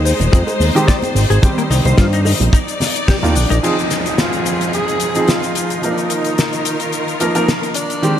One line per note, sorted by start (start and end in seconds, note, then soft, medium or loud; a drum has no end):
0.00 0.13 D#2 loud
0.00 1.41 G#3 medium
0.00 1.40 D#4 medium
0.00 2.49 C5 medium
0.05 0.10 C5 medium
0.05 open hi-hat loud
0.05 shaker medium
0.20 0.29 D#1 medium
0.20 closed hi-hat medium
0.20 high conga medium
0.20 low conga medium
0.20 shaker medium
0.33 0.44 F2 loud
0.33 0.37 G#4 loud
0.33 kick loud
0.33 closed hi-hat medium
0.33 shaker medium
0.47 closed hi-hat soft
0.47 high bongo soft
0.47 shaker soft
0.60 0.71 D#2 medium
0.60 open hi-hat loud
0.60 high conga medium
0.60 shaker medium
0.75 0.88 D#3 loud
0.75 0.88 G#3 medium
0.75 0.89 C4 medium
0.75 0.89 G4 loud
0.75 closed hi-hat medium
0.75 shaker soft
0.88 0.95 D5 medium
0.88 kick loud
0.88 snare loud
0.88 closed hi-hat medium
0.88 shaker medium
1.02 closed hi-hat soft
1.02 high conga medium
1.02 shaker soft
1.15 1.26 G#1 medium
1.15 open hi-hat medium
1.15 shaker medium
1.30 1.39 G#1 medium
1.30 1.37 G#4 loud
1.30 closed hi-hat medium
1.30 shaker soft
1.42 2.51 D#3 medium
1.42 2.51 G3 medium
1.42 1.50 C4 medium
1.42 2.52 C4 medium
1.42 2.52 D#4 medium
1.42 2.52 G4 medium
1.42 kick loud
1.42 closed hi-hat medium
1.42 high conga medium
1.42 shaker medium
1.58 1.62 A#3 loud
1.58 closed hi-hat soft
1.58 shaker soft
1.70 1.81 C2 medium
1.70 1.75 D#4 loud
1.70 open hi-hat loud
1.70 high bongo soft
1.70 shaker medium
1.85 1.94 C2 medium
1.85 1.95 C5 medium
1.85 closed hi-hat medium
1.85 high conga medium
1.85 shaker medium
1.98 2.34 G2 loud
1.98 2.05 F4 medium
1.98 kick loud
1.98 snare loud
1.98 closed hi-hat medium
1.98 shaker medium
2.13 2.19 D#4 medium
2.13 closed hi-hat soft
2.13 shaker soft
2.25 2.30 D#4 medium
2.25 open hi-hat loud
2.25 high bongo medium
2.25 shaker medium
2.40 2.50 A#1 medium
2.40 closed hi-hat medium
2.40 high conga medium
2.40 low conga medium
2.40 shaker medium
2.53 3.62 D#4 medium
2.53 2.58 D#4 loud
2.53 3.62 D5 medium
2.53 kick loud
2.53 closed hi-hat medium
2.53 shaker medium
2.68 closed hi-hat soft
2.68 shaker soft
2.80 snare medium
2.80 open hi-hat loud
2.80 high conga medium
2.80 shaker medium
2.95 closed hi-hat medium
2.95 shaker medium
3.08 3.15 G4 medium
3.08 kick loud
3.08 snare loud
3.08 closed hi-hat medium
3.08 shaker medium
3.23 3.37 D#2 medium
3.23 3.31 D#3 medium
3.23 3.31 A#3 medium
3.23 3.31 D4 medium
3.23 3.31 F4 loud
3.23 closed hi-hat soft
3.23 high conga medium
3.23 shaker soft
3.35 3.46 A#1 medium
3.35 3.64 D4 medium
3.35 open hi-hat medium
3.35 shaker medium
3.50 3.60 A#1 medium
3.50 3.57 D#4 loud
3.50 closed hi-hat medium
3.50 shaker medium
3.63 5.81 F3 medium
3.63 3.73 F3 medium
3.63 5.81 C4 medium
3.63 3.73 C4 medium
3.63 4.20 D#4 medium
3.63 7.99 D#4 medium
3.63 3.73 D#4 medium
3.63 5.81 G#4 medium
3.63 3.73 G#4 medium
3.63 closed hi-hat medium
3.63 crash medium
3.63 downlifter medium
3.63 shaker medium
3.79 closed hi-hat soft
3.79 shaker soft
3.91 snare medium
3.91 closed hi-hat medium
3.91 shaker medium
4.06 closed hi-hat medium
4.06 shaker soft
4.18 4.74 F4 medium
4.18 snare loud
4.18 closed hi-hat medium
4.18 shaker medium
4.33 closed hi-hat soft
4.33 shaker soft
4.46 closed hi-hat medium
4.46 shaker medium
4.61 closed hi-hat medium
4.61 shaker soft
4.73 5.30 G#4 loud
4.73 closed hi-hat medium
4.73 shaker medium
4.88 closed hi-hat soft
4.88 shaker soft
5.00 closed hi-hat medium
5.00 shaker medium
5.15 5.29 F3 medium
5.15 5.29 C4 medium
5.15 5.29 D#4 medium
5.15 5.29 G#4 medium
5.15 closed hi-hat medium
5.15 shaker soft
5.28 5.83 F4 medium
5.28 snare loud
5.28 closed hi-hat medium
5.28 shaker medium
5.43 closed hi-hat soft
5.43 shaker soft
5.55 closed hi-hat medium
5.55 shaker medium
5.70 closed hi-hat medium
5.70 shaker soft
5.82 8.01 D#3 medium
5.82 7.17 F3 medium
5.82 7.18 A#3 medium
5.82 5.92 D#4 medium
5.82 7.18 D#4 medium
5.82 8.01 F4 medium
5.82 8.01 A#4 medium
5.82 7.18 A#4 medium
5.82 closed hi-hat medium
5.82 shaker soft
5.90 6.00 D4 medium
5.98 6.94 D#4 medium
5.98 closed hi-hat soft
5.98 shaker soft
6.10 closed hi-hat medium
6.10 shaker medium
6.24 closed hi-hat medium
6.24 shaker soft
6.38 snare loud
6.38 closed hi-hat medium
6.38 shaker medium
6.53 closed hi-hat soft
6.53 shaker soft
6.65 closed hi-hat medium
6.65 shaker medium
6.80 closed hi-hat medium
6.80 shaker soft
6.92 closed hi-hat medium
6.92 shaker medium
7.08 closed hi-hat soft
7.08 shaker soft
7.20 7.33 F3 medium
7.20 7.33 A#3 medium
7.20 7.34 D#4 medium
7.20 7.34 A#4 medium
7.20 closed hi-hat medium
7.20 shaker medium
7.35 7.43 F3 medium
7.35 7.44 A#3 medium
7.35 7.44 D#4 medium
7.35 7.44 A#4 loud
7.35 closed hi-hat medium
7.35 shaker soft
7.48 snare loud
7.48 closed hi-hat medium
7.48 shaker soft
7.63 closed hi-hat soft
7.63 shaker soft
7.74 8.20 D4 medium
7.74 closed hi-hat medium
7.74 shaker medium
7.90 closed hi-hat medium
7.90 shaker soft
8.02 8.12 D#3 medium
8.02 8.13 G#3 medium
8.02 8.20 G#3 medium
8.02 8.13 C4 medium
8.02 8.13 G4 medium
8.02 8.20 G4 medium
8.02 8.20 C5 medium
8.02 closed hi-hat medium
8.02 shaker soft